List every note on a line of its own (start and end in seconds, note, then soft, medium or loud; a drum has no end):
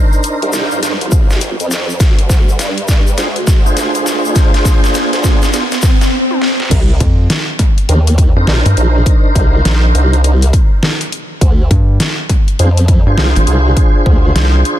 0.00 0.80 D4 medium
0.00 0.80 D#4 medium
0.00 0.80 A#4 medium
0.00 0.80 C5 loud
0.00 riser medium
0.13 shaker soft
0.23 closed hi-hat medium
0.23 shaker medium
0.42 0.69 C2 medium
0.42 closed hi-hat medium
0.53 snare medium
0.53 shaker medium
0.71 0.99 G2 medium
0.71 shaker soft
0.82 0.93 D4 medium
0.82 0.93 D#4 medium
0.82 0.93 A#4 medium
0.82 0.93 C5 loud
0.82 snare medium
0.82 closed hi-hat medium
0.82 shaker medium
1.01 1.57 C2 loud
1.01 closed hi-hat medium
1.11 kick loud
1.11 shaker loud
1.30 snare medium
1.30 shaker soft
1.41 closed hi-hat medium
1.41 shaker medium
1.60 1.99 F2 loud
1.60 closed hi-hat medium
1.60 shaker soft
1.71 snare medium
1.71 shaker loud
1.90 shaker soft
2.00 2.57 D2 medium
2.00 kick loud
2.00 snare medium
2.00 closed hi-hat medium
2.00 shaker medium
2.19 closed hi-hat medium
2.30 kick loud
2.30 snare medium
2.30 shaker loud
2.49 shaker soft
2.59 3.17 G2 loud
2.59 snare medium
2.59 closed hi-hat medium
2.59 shaker medium
2.78 closed hi-hat medium
2.88 kick medium
2.88 snare medium
2.88 shaker medium
3.07 shaker soft
3.18 3.75 D2 medium
3.18 3.28 D4 medium
3.18 3.28 F4 medium
3.18 3.28 G#4 medium
3.18 3.28 C5 loud
3.18 snare medium
3.18 closed hi-hat medium
3.18 shaker medium
3.36 closed hi-hat medium
3.47 kick loud
3.47 snare medium
3.47 shaker medium
3.66 5.51 D4 loud
3.66 5.51 F4 medium
3.66 5.51 G#4 medium
3.66 5.51 C5 loud
3.66 shaker soft
3.77 4.22 D2 loud
3.77 snare medium
3.77 closed hi-hat medium
3.77 shaker medium
3.95 closed hi-hat medium
3.95 shaker soft
4.06 snare medium
4.06 shaker medium
4.25 4.52 F2 loud
4.25 shaker soft
4.35 kick loud
4.35 snare medium
4.35 closed hi-hat medium
4.35 shaker medium
4.54 snare medium
4.54 closed hi-hat medium
4.65 kick loud
4.65 snare medium
4.65 shaker loud
4.84 snare medium
4.84 closed hi-hat soft
4.84 shaker soft
4.94 snare loud
4.94 closed hi-hat medium
4.94 shaker medium
5.13 5.40 D2 medium
5.13 snare medium
5.13 closed hi-hat medium
5.24 kick medium
5.24 snare loud
5.24 shaker loud
5.42 snare medium
5.42 closed hi-hat soft
5.42 shaker soft
5.53 5.63 D4 medium
5.53 5.63 F4 medium
5.53 5.63 G#4 medium
5.53 5.63 C5 loud
5.53 snare loud
5.53 closed hi-hat medium
5.53 swell medium
5.53 shaker medium
5.71 snare loud
5.71 closed hi-hat medium
5.71 shaker soft
5.82 kick loud
5.82 snare loud
5.82 shaker loud
6.01 snare medium
6.01 closed hi-hat soft
6.01 shaker soft
6.31 high tom medium
6.42 snare medium
6.60 snare medium
6.71 6.99 C2 loud
6.71 kick loud
6.71 closed hi-hat medium
6.71 crash loud
7.00 7.28 F2 loud
7.00 kick loud
7.00 closed hi-hat medium
7.30 snare loud
7.30 closed hi-hat medium
7.59 kick medium
7.59 snare soft
7.59 closed hi-hat medium
7.78 closed hi-hat soft
7.89 8.34 D#2 loud
7.89 7.99 D4 medium
7.89 7.99 D#4 medium
7.89 7.99 A#4 medium
7.89 7.99 C5 loud
7.89 closed hi-hat medium
8.07 closed hi-hat medium
8.18 kick loud
8.18 closed hi-hat medium
8.36 8.46 F2 loud
8.36 10.22 D4 loud
8.36 10.22 D#4 medium
8.36 10.22 A#4 medium
8.36 10.22 C5 loud
8.47 8.63 A#1 loud
8.47 snare loud
8.66 8.75 G2 medium
8.66 snare soft
8.66 closed hi-hat medium
8.77 9.05 A#1 medium
8.77 closed hi-hat medium
9.06 kick loud
9.06 closed hi-hat medium
9.35 9.63 C2 medium
9.35 kick loud
9.35 closed hi-hat medium
9.65 9.93 A#1 loud
9.65 snare loud
9.65 closed hi-hat medium
9.95 10.52 C2 medium
9.95 closed hi-hat medium
10.13 closed hi-hat soft
10.24 10.34 D4 medium
10.24 10.34 D#4 medium
10.24 10.34 A#4 medium
10.24 10.34 C5 loud
10.24 closed hi-hat medium
10.42 closed hi-hat medium
10.53 kick loud
10.53 closed hi-hat medium
10.83 snare loud
11.01 closed hi-hat medium
11.12 closed hi-hat medium
11.41 11.69 D2 loud
11.41 kick loud
11.41 closed hi-hat medium
11.71 11.99 G2 loud
11.71 kick loud
11.71 closed hi-hat medium
12.00 snare loud
12.00 closed hi-hat medium
12.29 kick medium
12.29 snare soft
12.29 closed hi-hat medium
12.48 closed hi-hat soft
12.59 13.04 F2 loud
12.59 12.69 D4 medium
12.59 12.69 F4 medium
12.59 12.69 G#4 medium
12.59 12.69 C5 loud
12.59 closed hi-hat medium
12.77 closed hi-hat medium
12.88 kick loud
12.88 closed hi-hat medium
13.06 13.16 G2 loud
13.06 14.79 D4 medium
13.06 14.79 F4 medium
13.06 14.79 G#4 medium
13.06 14.79 C5 loud
13.18 13.34 C2 loud
13.18 snare loud
13.36 13.46 G#1 medium
13.36 snare soft
13.36 closed hi-hat medium
13.47 13.75 C2 medium
13.47 closed hi-hat medium
13.77 kick loud
13.77 closed hi-hat medium
14.06 14.34 D2 medium
14.06 kick loud
14.35 14.63 C2 loud
14.35 snare loud
14.35 closed hi-hat medium
14.65 closed hi-hat medium